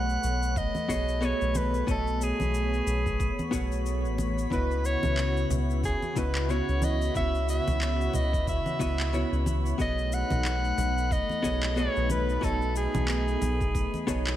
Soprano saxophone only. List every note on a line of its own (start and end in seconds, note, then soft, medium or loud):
0.00 0.60 F#5 loud
0.58 1.26 D#5 medium
1.25 1.59 C#5 medium
1.57 1.89 B4 medium
1.91 2.25 A4 medium
2.23 3.54 G#4 medium
4.53 4.88 B4 medium
4.86 5.51 C#5 loud
5.85 6.19 G#4 medium
6.18 6.52 B4 medium
6.51 6.85 C#5 medium
6.84 7.16 D#5 medium
7.17 7.47 E5 loud
7.50 8.17 E5 loud
8.16 8.48 D#5 loud
8.49 9.43 E5 medium
9.81 10.15 D#5 loud
10.14 11.14 F#5 loud
11.12 11.80 D#5 loud
11.78 12.11 C#5 loud
12.11 12.46 B4 medium
12.44 12.77 A4 loud
12.77 14.04 G#4 medium